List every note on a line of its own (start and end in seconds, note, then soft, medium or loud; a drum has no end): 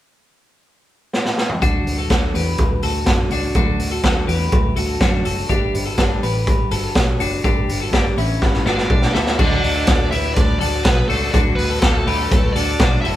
1.13 snare medium
1.25 snare medium
1.38 snare medium
1.49 mid tom medium
1.61 1.82 D2 loud
1.61 1.86 D3 medium
1.61 1.86 F#3 medium
1.61 1.86 A3 medium
1.61 1.85 D4 medium
1.61 1.83 F#4 medium
1.61 kick loud
1.61 closed hi-hat medium
1.85 2.06 D2 medium
1.85 2.09 A3 soft
1.85 2.10 D4 soft
1.85 2.10 F#4 soft
1.85 open hi-hat medium
1.98 2.10 F#4 soft
1.98 2.09 A4 medium
2.10 2.30 D2 medium
2.10 2.34 D3 medium
2.10 2.34 F#3 medium
2.10 2.35 A3 medium
2.10 2.34 D4 medium
2.10 2.33 F#4 medium
2.10 2.35 A4 medium
2.10 kick loud
2.10 snare medium
2.10 closed hi-hat medium
2.34 2.55 E2 medium
2.34 2.58 A3 soft
2.34 2.58 D4 medium
2.34 2.58 F#4 medium
2.34 2.81 G4 soft
2.34 2.80 B4 medium
2.34 open hi-hat medium
2.58 2.79 D2 loud
2.58 2.82 F#3 medium
2.58 2.83 A3 medium
2.58 2.82 D4 medium
2.58 2.80 F#4 medium
2.58 kick loud
2.58 closed hi-hat medium
2.82 3.03 D2 loud
2.82 3.06 A3 soft
2.82 3.07 D4 soft
2.82 3.07 F#4 medium
2.82 3.29 A4 medium
2.82 open hi-hat medium
3.06 3.27 F#2 medium
3.06 3.31 D3 medium
3.06 3.31 F#3 medium
3.06 3.32 A3 medium
3.06 3.31 D4 medium
3.06 3.29 F#4 medium
3.06 kick loud
3.06 snare loud
3.06 closed hi-hat medium
3.30 3.51 C#2 medium
3.30 3.55 A3 soft
3.30 3.55 D4 soft
3.30 3.55 F#4 medium
3.30 open hi-hat medium
3.55 3.75 D2 loud
3.55 3.80 D3 medium
3.55 3.80 F#3 medium
3.55 3.80 A3 loud
3.55 3.79 D4 medium
3.55 3.78 F#4 loud
3.55 kick loud
3.55 closed hi-hat medium
3.79 3.99 D2 medium
3.79 4.03 A3 soft
3.79 4.03 D4 soft
3.79 4.04 F#4 soft
3.79 open hi-hat medium
3.91 4.03 F#4 medium
3.91 4.02 A4 medium
4.03 4.24 D2 medium
4.03 4.28 D3 medium
4.03 4.28 F#3 medium
4.03 4.28 A3 medium
4.03 4.28 D4 medium
4.03 4.26 F#4 medium
4.03 4.27 A4 medium
4.03 kick loud
4.03 snare loud
4.03 closed hi-hat medium
4.27 4.48 E2 medium
4.27 4.52 A3 medium
4.27 4.52 D4 medium
4.27 4.52 F#4 medium
4.27 4.74 G4 medium
4.27 4.74 B4 medium
4.27 open hi-hat medium
4.52 4.73 D2 medium
4.52 4.77 F#3 medium
4.52 4.77 A3 medium
4.52 4.76 D4 medium
4.52 4.75 F#4 medium
4.52 kick loud
4.52 closed hi-hat medium
4.76 4.97 D2 medium
4.76 5.00 A3 soft
4.76 5.01 D4 medium
4.76 5.01 F#4 soft
4.76 5.01 A4 medium
4.76 open hi-hat medium
5.00 5.21 F#2 medium
5.00 5.25 D3 medium
5.00 5.26 F#3 medium
5.00 5.26 A3 medium
5.00 5.25 D4 medium
5.00 5.24 F#4 medium
5.00 kick loud
5.00 snare loud
5.00 closed hi-hat medium
5.25 5.45 F#1 medium
5.25 5.49 A3 medium
5.25 5.49 D4 soft
5.25 5.50 F#4 medium
5.25 5.50 A4 medium
5.25 open hi-hat medium
5.49 5.70 G1 medium
5.49 5.74 G3 medium
5.49 5.74 A3 medium
5.49 5.74 D4 loud
5.49 5.74 G4 medium
5.49 5.73 B4 medium
5.49 kick medium
5.49 closed hi-hat medium
5.74 5.94 G1 medium
5.74 5.98 D4 soft
5.74 5.98 G4 soft
5.74 5.99 B4 medium
5.74 open hi-hat medium
5.86 5.99 F#4 soft
5.86 5.97 A4 medium
5.98 6.18 G1 medium
5.98 6.23 G3 medium
5.98 6.23 A3 medium
5.98 6.23 D4 medium
5.98 6.22 G4 medium
5.98 6.22 A4 medium
5.98 6.21 B4 medium
5.98 kick medium
5.98 snare medium
5.98 closed hi-hat medium
6.22 6.47 A1 medium
6.22 6.46 D4 soft
6.22 6.47 G4 soft
6.22 6.47 B4 medium
6.22 open hi-hat medium
6.46 6.67 G1 loud
6.46 6.71 A3 medium
6.46 6.72 D4 medium
6.46 6.71 G4 medium
6.46 6.70 B4 medium
6.46 kick loud
6.46 closed hi-hat medium
6.71 6.91 G1 medium
6.71 6.96 D4 soft
6.71 7.18 F#4 medium
6.71 6.96 G4 medium
6.71 7.17 A4 medium
6.71 6.95 B4 medium
6.71 open hi-hat medium
6.95 7.16 B1 medium
6.95 7.20 G3 medium
6.95 7.20 A3 medium
6.95 7.21 D4 medium
6.95 7.20 G4 medium
6.95 7.18 B4 medium
6.95 kick loud
6.95 snare loud
6.95 closed hi-hat medium
7.20 7.40 F#1 medium
7.20 7.43 D4 soft
7.20 7.44 F#4 medium
7.20 7.43 G4 medium
7.20 7.44 B4 medium
7.20 open hi-hat medium
7.44 7.64 G1 medium
7.44 7.68 G3 medium
7.44 7.69 A3 medium
7.44 7.68 D4 medium
7.44 7.67 G4 medium
7.44 7.66 B4 loud
7.44 kick loud
7.44 closed hi-hat soft
7.67 7.89 G1 medium
7.67 7.91 D4 soft
7.67 7.91 G4 medium
7.67 7.92 B4 medium
7.67 open hi-hat medium
7.80 7.92 F#4 medium
7.80 7.93 A4 medium
7.91 8.13 G1 medium
7.91 8.16 G3 medium
7.91 8.17 A3 medium
7.91 8.17 D4 medium
7.91 8.17 G4 medium
7.91 8.15 B4 medium
7.91 kick loud
7.91 snare medium
7.91 closed hi-hat medium
8.17 8.37 A1 medium
8.17 8.64 C#4 medium
8.17 8.40 D4 medium
8.17 8.63 E4 medium
8.17 8.41 G4 soft
8.17 8.41 B4 medium
8.17 open hi-hat medium
8.41 8.62 G1 loud
8.41 8.66 A3 medium
8.41 8.66 D4 medium
8.41 8.66 G4 medium
8.41 8.64 B4 medium
8.41 kick loud
8.41 snare medium
8.53 snare soft
8.65 8.86 G1 medium
8.65 9.12 D4 medium
8.65 8.89 D4 soft
8.65 8.90 F#4 medium
8.65 8.90 G4 soft
8.65 8.90 B4 medium
8.65 9.12 D5 medium
8.65 snare medium
8.78 snare medium
8.89 9.10 B1 medium
8.89 9.14 G3 medium
8.89 9.14 A3 medium
8.89 9.15 D4 medium
8.89 9.15 G4 medium
8.89 9.15 B4 medium
8.89 kick loud
9.02 snare medium
9.14 9.35 D2 medium
9.14 9.38 A3 soft
9.14 9.39 D4 medium
9.14 9.38 E4 medium
9.14 9.39 F#4 medium
9.14 9.39 A4 medium
9.14 9.38 E5 medium
9.14 snare medium
9.26 snare medium
9.39 9.59 D2 loud
9.39 9.63 D3 medium
9.39 9.64 F#3 medium
9.39 9.64 A3 medium
9.39 10.08 D4 medium
9.39 9.63 D4 medium
9.39 9.62 F#4 loud
9.39 10.08 D5 loud
9.39 kick loud
9.39 crash medium
9.64 9.83 D2 medium
9.64 9.87 A3 soft
9.64 9.87 D4 soft
9.64 open hi-hat medium
9.76 9.87 F#4 medium
9.76 9.86 A4 medium
9.87 10.08 D2 loud
9.87 10.12 F#3 medium
9.87 10.12 D4 medium
9.87 10.11 F#4 medium
9.87 10.11 A4 medium
9.87 kick loud
9.87 snare loud
9.87 hi-hat pedal medium
9.87 ride medium
10.10 10.32 D2 loud
10.10 10.36 A3 soft
10.10 10.37 D4 medium
10.10 10.34 E4 medium
10.10 10.37 F#4 medium
10.10 10.58 G4 medium
10.10 10.58 B4 medium
10.10 10.34 E5 loud
10.10 open hi-hat medium
10.34 10.57 D2 loud
10.34 10.61 D3 medium
10.34 10.61 F#3 medium
10.34 10.61 A3 medium
10.34 10.58 D4 medium
10.34 10.60 D4 medium
10.34 10.58 D5 loud
10.34 kick loud
10.34 hi-hat pedal medium
10.34 ride medium
10.38 10.59 F#4 medium
10.59 10.81 D2 medium
10.59 10.85 A3 soft
10.59 10.83 D4 medium
10.59 10.85 D4 medium
10.59 10.85 F#4 medium
10.59 11.06 A4 medium
10.59 10.85 D5 medium
10.59 open hi-hat medium
10.84 11.05 B1 loud
10.84 11.09 F#3 medium
10.84 11.10 A3 medium
10.84 11.07 B3 medium
10.84 11.08 F#4 medium
10.84 11.08 B4 medium
10.84 kick loud
10.84 snare loud
10.84 hi-hat pedal medium
10.84 ride medium
11.08 11.29 C#2 medium
11.08 11.31 A3 medium
11.08 11.34 D4 soft
11.08 11.34 F#4 medium
11.08 11.31 A4 medium
11.08 open hi-hat medium
11.12 11.33 A3 soft
11.31 11.54 D2 loud
11.31 11.58 D3 medium
11.31 11.58 F#3 medium
11.31 11.58 A3 medium
11.31 11.44 D4 medium
11.31 11.57 F#4 loud
11.31 11.38 D5 loud
11.31 kick loud
11.31 hi-hat pedal medium
11.31 ride soft
11.35 11.58 D4 medium
11.56 11.78 D2 loud
11.56 11.80 B3 medium
11.56 11.83 D4 medium
11.56 11.82 F#4 medium
11.56 11.80 B4 medium
11.56 open hi-hat medium
11.60 11.82 A3 soft
11.70 11.83 F#4 medium
11.70 11.82 A4 medium
11.80 12.02 D2 loud
11.80 12.07 F#3 medium
11.80 12.51 A3 medium
11.80 12.07 A3 medium
11.80 12.50 A4 medium
11.80 12.07 A4 medium
11.80 kick loud
11.80 snare loud
11.80 hi-hat pedal medium
11.80 ride medium
11.84 12.07 D4 medium
11.84 12.05 F#4 medium
12.07 12.27 D2 medium
12.07 12.31 A3 medium
12.07 12.31 D4 medium
12.07 12.31 F#4 medium
12.07 12.53 G4 medium
12.07 12.53 B4 medium
12.07 open hi-hat medium
12.31 12.51 D2 loud
12.31 12.56 D3 medium
12.31 12.56 F#3 medium
12.31 12.56 A3 medium
12.31 12.56 D4 medium
12.31 12.54 F#4 medium
12.31 kick loud
12.31 hi-hat pedal medium
12.31 ride medium
12.53 12.75 D2 loud
12.53 13.00 D4 medium
12.53 12.80 D4 soft
12.53 12.80 F#4 medium
12.53 12.80 A4 medium
12.53 13.01 D5 loud
12.53 open hi-hat medium
12.58 12.79 A3 soft
12.79 13.00 B1 medium
12.79 13.04 F#3 medium
12.79 13.04 A3 medium
12.79 13.04 D4 medium
12.79 13.03 F#4 medium
12.79 kick loud
12.79 snare loud
12.79 hi-hat pedal medium
12.79 ride medium
13.01 13.16 F#1 medium
13.01 13.16 D4 medium
13.01 13.14 E4 medium
13.01 13.16 F#4 medium
13.01 13.16 A4 medium
13.01 13.08 E5 loud
13.01 open hi-hat medium
13.06 13.16 A3 soft